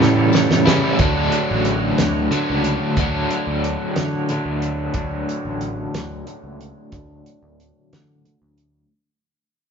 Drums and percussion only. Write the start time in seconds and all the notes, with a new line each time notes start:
0.02 snare
0.33 snare, tambourine
0.51 snare
0.67 snare
0.99 kick, closed hi-hat
1.32 closed hi-hat
1.65 closed hi-hat
1.98 snare, closed hi-hat
2.32 closed hi-hat
2.64 closed hi-hat
2.97 kick, closed hi-hat
3.31 closed hi-hat
3.64 closed hi-hat
3.96 snare, closed hi-hat
4.29 closed hi-hat
4.62 closed hi-hat
4.94 kick, closed hi-hat
5.29 closed hi-hat
5.61 closed hi-hat
5.94 snare, closed hi-hat
6.27 closed hi-hat
6.61 closed hi-hat
6.92 kick, closed hi-hat
7.26 closed hi-hat
7.60 closed hi-hat
7.93 snare, closed hi-hat
8.25 closed hi-hat
8.58 closed hi-hat